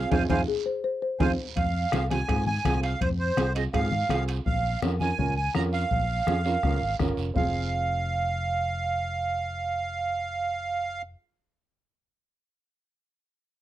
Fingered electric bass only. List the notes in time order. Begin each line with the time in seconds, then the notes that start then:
0.11 F2
0.29 F2
1.20 F2
1.56 F2
1.93 C2
2.29 G#2
2.65 C2
3.01 F2
3.37 C2
3.74 G#2
4.10 C2
4.46 A#1
4.82 F2
5.18 C#2
5.55 F2
5.91 A#1
6.27 F2
6.63 C#2
6.81 G#1
7.00 G1
7.17 F1
7.36 F1